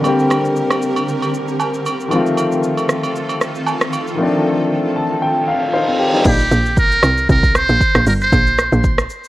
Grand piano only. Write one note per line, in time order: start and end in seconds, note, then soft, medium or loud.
0.00 2.06 D3 medium
0.00 2.07 G3 medium
0.00 2.13 F4 medium
0.05 2.08 A#3 medium
0.05 2.09 C4 medium
0.05 2.09 G4 medium
2.08 4.13 D#3 medium
2.08 4.14 F3 medium
2.08 2.18 G#3 medium
2.13 4.15 C4 medium
2.13 4.16 F4 medium
2.18 4.17 A3 medium
4.15 6.20 D#3 medium
4.15 6.21 F3 medium
4.15 5.71 A3 medium
4.20 5.72 C4 medium
4.20 5.72 D4 medium
4.96 5.20 A5 medium
5.22 5.46 G5 medium
5.48 5.72 F5 medium
5.73 5.87 D#4 medium
5.73 5.87 C5 medium
5.73 6.22 F5 medium
5.88 5.99 C4 medium
5.88 5.99 A4 medium
5.99 6.13 G4 medium
6.13 6.39 G3 medium
6.13 6.38 D#4 medium